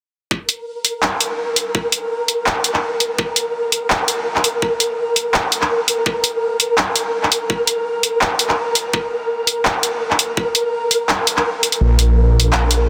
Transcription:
0.30 synth texture A#4, kick
0.49 closed hi-hat
0.85 closed hi-hat
1.03 clap
1.20 closed hi-hat
1.56 closed hi-hat
1.75 kick
1.92 closed hi-hat
2.28 closed hi-hat
2.46 clap
2.64 closed hi-hat
2.74 clap
3.00 closed hi-hat
3.18 kick
3.36 closed hi-hat
3.72 closed hi-hat
3.90 clap
4.08 closed hi-hat
4.36 clap
4.44 closed hi-hat
4.62 kick
4.80 closed hi-hat
5.16 closed hi-hat
5.34 clap
5.52 closed hi-hat
5.61 clap
5.88 closed hi-hat
6.06 kick
6.24 closed hi-hat
6.60 closed hi-hat
6.78 clap
6.96 closed hi-hat
7.23 clap
7.32 closed hi-hat
7.50 kick
7.67 closed hi-hat
8.03 closed hi-hat
8.21 clap
8.39 closed hi-hat
8.49 clap
8.75 closed hi-hat
8.93 kick
9.47 closed hi-hat
9.65 clap
9.83 closed hi-hat
10.11 clap
10.19 closed hi-hat
10.37 kick
10.55 closed hi-hat
10.91 closed hi-hat
11.09 clap
11.27 closed hi-hat
11.37 clap
11.63 closed hi-hat
11.72 closed hi-hat
11.81 detuned saw bass A#1, synth texture A#4
11.99 closed hi-hat
12.40 closed hi-hat
12.53 clap
12.71 closed hi-hat

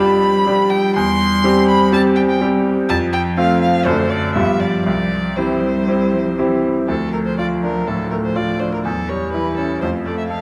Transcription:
Already playing: grand piano F2, cello G3
0.00 grand piano G3 D4 G4, violin B5
0.47 grand piano G3 D4 G4
0.70 violin G5
0.96 grand piano E2, violin C6
1.44 grand piano G3 C4 G4
1.69 violin B5
1.92 grand piano G3 C4 G4, violin A5
2.16 violin G5
2.30 violin G5
2.41 grand piano G3 C4 G4
2.89 grand piano F2, cello F3, violin A5
3.13 violin G5
3.37 grand piano A3 C4 F4, violin F5
3.62 violin F5
3.86 grand piano F#2 A3 D4 A4, cello D3, violin C5
4.10 violin D5
4.35 grand piano G2 B3 F4 G4, cello F3, violin E5
4.60 violin D5
4.86 grand piano C2, violin D5
5.36 cello E3, grand piano C4 E4 G4, violin C5
5.61 cello G3
5.88 grand piano C4 E4 G4
6.12 cello F3
6.39 cello E3, grand piano C4 E4 G4
6.88 grand piano D2, cello F3, violin A4
7.13 grand piano A3, violin A#4
7.26 violin C5
7.38 grand piano F4, violin D5
7.63 grand piano D4, violin A#4
7.87 grand piano A2, violin A4
8.11 grand piano A3, violin A#4
8.25 violin C5
8.36 grand piano F4, violin D5
8.60 grand piano D4, violin C5
8.74 violin A#4
8.85 grand piano E2, cello F#3, violin A4
9.10 grand piano G3, violin C#5
9.33 cello E3, grand piano E4, violin B4
9.57 grand piano C#4, violin A4
9.81 grand piano F2, cello A3, violin C5
10.06 grand piano A3, violin D5
10.18 violin E5
10.28 cello A3, grand piano A4, violin F5

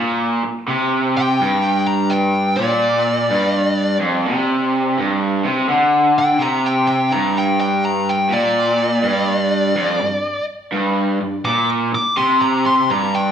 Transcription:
Already playing: overdriven electric guitar A#2
0.43 muted overdriven electric guitar stroke
0.68 overdriven electric guitar C3
1.17 lead electric guitar G5
1.40 overdriven electric guitar G2
1.87 lead electric guitar A#5
2.10 lead electric guitar G5
2.56 overdriven electric guitar A#2, lead electric guitar D5
3.30 overdriven electric guitar G2
4.00 overdriven electric guitar F2
4.26 overdriven electric guitar C3
4.98 overdriven electric guitar G2
5.44 overdriven electric guitar C3
5.69 overdriven electric guitar D3
6.18 lead electric guitar G5
6.40 overdriven electric guitar C3, lead electric guitar A#5
6.66 lead electric guitar G5
6.88 lead electric guitar G5
7.12 overdriven electric guitar G2, lead electric guitar A#5
7.38 lead electric guitar G5
7.60 lead electric guitar G5
7.85 lead electric guitar A#5
8.09 lead electric guitar G5
8.30 overdriven electric guitar A#2, lead electric guitar D5
9.03 overdriven electric guitar G2
9.76 overdriven electric guitar F2
10.01 overdriven electric guitar G2
10.72 overdriven electric guitar G2
11.21 overdriven electric guitar G2
11.45 overdriven electric guitar A#2, lead electric guitar D6
11.92 lead electric guitar D6, muted overdriven electric guitar stroke
12.17 overdriven electric guitar C3, lead electric guitar C6
12.42 lead electric guitar A#5
12.66 lead electric guitar C6
12.90 overdriven electric guitar G2, lead electric guitar A#5
13.15 lead electric guitar G5

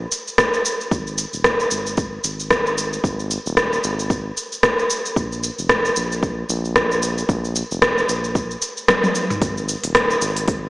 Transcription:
0.12 shaker
0.27 shaker
0.38 kick, cross-stick, shaker
0.54 shaker
0.65 shaker
0.81 shaker
0.91 analog synth bass G#1, kick, shaker
1.07 shaker
1.18 shaker
1.33 analog synth bass D#1, shaker
1.44 kick, cross-stick, shaker
1.60 shaker
1.71 analog synth bass G#1, shaker
1.86 shaker
1.97 kick, shaker
2.24 analog synth bass G#1, shaker
2.40 shaker
2.51 kick, cross-stick, shaker
2.66 shaker
2.78 shaker
2.93 shaker
3.04 analog synth bass G#1, kick, shaker
3.20 shaker
3.31 shaker
3.46 analog synth bass D#1, shaker
3.57 kick, cross-stick, shaker
3.73 shaker
3.84 analog synth bass G#1, shaker
3.99 shaker
4.10 kick, shaker
4.37 shaker
4.52 shaker
4.63 kick, cross-stick, shaker
4.79 shaker
4.90 shaker
5.06 shaker
5.16 analog synth bass A#1, kick, shaker
5.32 shaker
5.43 shaker
5.59 analog synth bass F1, shaker
5.69 kick, cross-stick, shaker
5.85 shaker
5.96 analog synth bass A#1, shaker
6.12 shaker
6.23 kick, shaker
6.49 analog synth bass A#1, shaker
6.65 shaker
6.76 kick, cross-stick, shaker
6.92 shaker
7.03 shaker
7.18 shaker
7.29 analog synth bass A#1, kick, shaker
7.44 shaker
7.56 shaker
7.71 analog synth bass F1, shaker
7.82 kick, cross-stick, shaker
7.98 shaker
8.09 analog synth bass A#1, shaker
8.24 shaker
8.35 kick, shaker
8.51 shaker
8.62 shaker
8.77 shaker
8.88 kick, cross-stick, high tom, shaker
9.04 high tom, shaker
9.15 shaker
9.30 mid tom, shaker
9.42 analog synth bass G#1, kick, open hi-hat, shaker
9.58 shaker
9.69 shaker
9.84 analog synth bass D#1, open hi-hat, shaker
9.95 kick, cross-stick, open hi-hat, shaker
10.10 shaker
10.21 analog synth bass G#1, shaker
10.37 open hi-hat, shaker
10.48 kick, open hi-hat, shaker

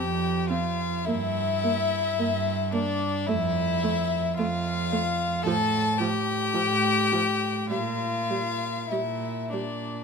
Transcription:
Already playing: cello F2, violin G4 G5
0.49 viola C4, violin F4 F5
1.05 cello G2, viola A#3, violin E4 E5
1.63 viola A#3
2.17 cello G2, viola A#3
2.71 viola A#3, violin D4 D5
3.26 cello F2, viola A3, violin E4 E5
3.83 viola A3
4.37 cello F2, viola A3, violin F4 F5
4.92 viola A3
5.43 cello A2, viola F3, violin A4 A5
5.99 viola F3, violin G4 G5
6.54 cello A2, viola F3
7.12 viola F3
7.69 cello A#2, viola G3, violin F4 F5
8.30 viola G3
8.89 cello A#2, viola G3, violin E4 E5
9.50 viola G3, violin D4 D5

